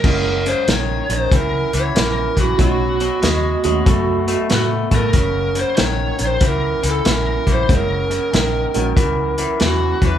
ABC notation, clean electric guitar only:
X:1
M:4/4
L:1/8
Q:"Swing" 1/4=94
K:F#mix
V:1 name="Clean electric guitar" clef=bass
[F,,C,] [F,,C,] [F,,D,] [F,,D,] [F,,E,] [F,,E,] [F,,E,] [F,,E,] | [B,,F,] [B,,F,] [B,,G,] [B,,G,] [B,,=A,] [B,,A,] [B,,A,] [B,,A,] | [F,,C,] [F,,C,] [F,,D,] [F,,D,] [F,,E,] [F,,E,] [F,,E,] [F,,E,] | [F,,C,] [F,,C,] [F,,D,] [F,,D,] [F,,E,] [F,,E,] [F,,E,] [F,,E,] |]